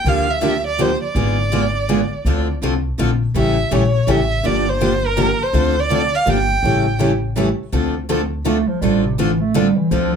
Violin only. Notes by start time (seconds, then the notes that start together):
0.08 F5
0.31 E5
0.67 D5
0.81 C5
1.04 D5
3.37 E5
3.73 C#5
4.10 E5
4.46 D5
4.69 C5
5.06 A#4
5.43 C5
5.80 D5
6.15 F5
6.29 G5